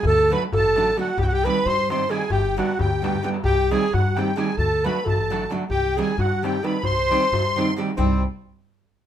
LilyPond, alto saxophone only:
\new Staff \with { instrumentName = "Alto saxophone" } { \time 5/8 \tempo 4 = 132 a'8 b'8 a'4 fis'8 | g'32 fis'32 g'16 b'8 c''8 c''8 aes'8 | g'8 fis'8 g'4~ g'32 r16. | g'8 aes'8 fis'8 g'8 aes'8 |
a'8 b'8 a'4 r8 | g'8 aes'8 fis'8 g'8 b'8 | c''2 r8 | c''8 r2 | }